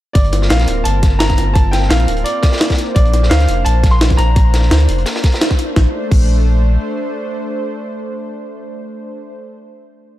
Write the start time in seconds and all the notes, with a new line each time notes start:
0.13 G1 A#3 C4 F4 A#4 D5, kick, closed hi-hat
0.24 closed hi-hat
0.33 snare, closed hi-hat
0.42 snare
0.49 A#1 F5, snare, closed hi-hat
0.60 snare, closed hi-hat
0.68 D1, closed hi-hat
0.84 G1 A5, closed hi-hat
1.03 kick, snare, closed hi-hat
1.19 A#5, snare, closed hi-hat
1.30 kick, snare, closed hi-hat
1.38 G1, snare, closed hi-hat
1.54 A5, kick, closed hi-hat
1.71 G5, snare, closed hi-hat
1.83 snare
1.89 A#1 F5, snare, closed hi-hat
2.00 closed hi-hat
2.08 D1, closed hi-hat
2.17 closed hi-hat
2.24 D5, closed hi-hat
2.43 kick, snare, closed hi-hat
2.52 snare, closed hi-hat
2.56 snare, closed hi-hat
2.60 snare, closed hi-hat
2.70 kick, snare, closed hi-hat
2.74 snare, closed hi-hat
2.78 D4 C5, closed hi-hat
2.95 A#1 D5, kick, closed hi-hat
3.05 closed hi-hat
3.14 snare, closed hi-hat
3.23 snare
3.30 D2 F5, snare, closed hi-hat
3.40 snare, closed hi-hat
3.49 F1, closed hi-hat
3.65 A#1 A5, closed hi-hat
3.83 kick, snare, closed hi-hat
3.91 C6
4.01 snare, closed hi-hat
4.10 kick, snare, closed hi-hat
4.17 A#1 A#5, snare, closed hi-hat
4.36 kick, closed hi-hat
4.54 snare, closed hi-hat
4.63 snare
4.71 D2, snare, closed hi-hat
4.81 closed hi-hat
4.89 F1, closed hi-hat
4.98 closed hi-hat
5.06 snare, closed hi-hat
5.16 snare, closed hi-hat
5.24 kick, snare, closed hi-hat
5.32 snare, closed hi-hat
5.41 snare, closed hi-hat
5.50 kick, snare, closed hi-hat
5.59 closed hi-hat
5.76 A#1 A3 D4 C5, kick, snare
6.11 A#1, kick, crash